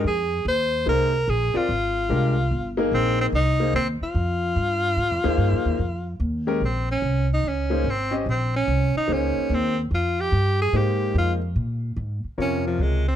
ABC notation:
X:1
M:4/4
L:1/8
Q:"Swing" 1/4=146
K:Fdor
V:1 name="Grand piano"
z4 [B,EAc] z2 [CFBd] | z2 [A,DGB] z2 [B,EAB]3 | z [B,EAc] z6 | z [B,EAc]3 z3 [A,_DGB] |
[K:Bbdor] z4 z [B,EAc] z [DGce] | z4 [B,EAc]3 z | z4 [A,B,Ec]3 z | z4 [C,FBd]3 z |]
V:2 name="Tenor saxophone"
A2 c2 B2 A F- | F4- F z C C | E2 C F4- F- | F6 z2 |
[K:Bbdor] C D2 E D2 C z | C D2 E D2 C z | F G2 A G2 F z | z4 D F, A, C |]
V:3 name="Upright bass" clef=bass
F,,2 E,,2 C,,2 B,,, z | A,,,2 C,,2 G,,,2 B,,,2 | C,,2 E,, z F,,2 G,,2 | (3A,, F,, E,, (3G,, F,, E,, F,,2 E,,2 |
[K:Bbdor] B,,,2 C,,2 D,,2 A,,,2 | B,,,2 C,, z D,, z E,,2 | F,,2 G,,2 A,,2 F,,2 | B,,2 A,, z F,,2 D,,2 |]